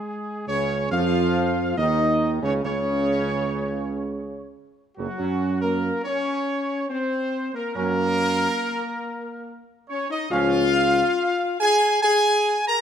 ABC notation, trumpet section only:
X:1
M:3/4
L:1/16
Q:1/4=70
K:Dblyd
V:1 name="Trumpet section"
A2 d2 f4 e3 d | d8- d z2 _G- | _G2 B2 d4 c3 B | B8- B z d e |
f6 a2 a3 b |]